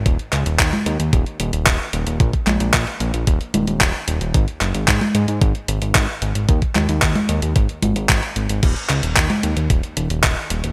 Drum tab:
CC |----------------|----------------|----------------|----------------|
HH |xxxxxxxxxxxxx-xx|xxxxxxxxxxxxx-xx|xxxxxxxxxxxxx-xx|xxxxxxxxxxxxxxxx|
CP |--x-x-------x---|--x-x-------x---|--x-x-------x---|--x-x-------x---|
CG |-----o----------|--o-------o-----|-----o----------|--o--o----o-----|
BD |o---o---o---o---|oo--o---o---o---|o---o---o---o---|oo--o---o---o---|

CC |x---------------|
HH |xxxxxxxxxxxxx-xx|
CP |--x-x-------x---|
CG |-----o----------|
BD |o---o---o---o---|